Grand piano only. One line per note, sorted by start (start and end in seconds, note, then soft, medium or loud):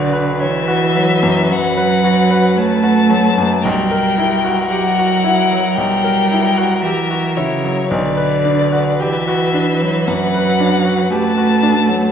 0.00 1.47 B1 medium
0.00 0.30 F#4 medium
0.00 0.13 B4 medium
0.13 0.57 B4 medium
0.40 0.68 C#5 medium
0.68 1.12 F#4 medium
0.96 1.40 F#3 medium
1.23 1.67 F#2 medium
1.50 1.93 F#3 medium
1.77 2.20 B4 medium
2.04 2.46 F#4 medium
2.31 2.73 B4 medium
2.57 2.84 C#5 medium
2.83 3.26 F#4 medium
3.10 3.53 F#3 medium
3.37 3.64 F#2 medium
3.65 5.72 B1 medium
3.91 4.33 A#4 medium
4.18 4.60 E4 medium
4.45 4.86 F#4 medium
4.71 4.97 G4 medium
4.98 5.40 F#4 medium
5.24 5.66 E4 medium
5.51 5.93 F#3 medium
5.78 7.87 B1 medium
6.04 6.46 A#4 medium
6.31 6.73 E4 medium
6.57 7.00 F#4 medium
6.85 7.11 G4 medium
7.11 7.53 F#4 medium
7.37 7.80 E4 medium
7.64 7.90 F#3 medium
7.91 10.04 B1 medium
8.17 8.61 B4 medium
8.45 8.89 D4 medium
8.72 9.16 F#4 medium
9.00 9.27 G4 medium
9.27 9.71 F#4 medium
9.54 9.97 D4 medium
9.81 10.24 F#3 medium
10.08 10.49 F#2 medium
10.34 10.75 B4 medium
10.60 11.01 D4 medium
10.85 11.26 F#4 medium
11.11 11.37 G4 medium
11.37 11.79 F#4 medium
11.63 12.05 D4 medium
11.89 12.12 F#3 medium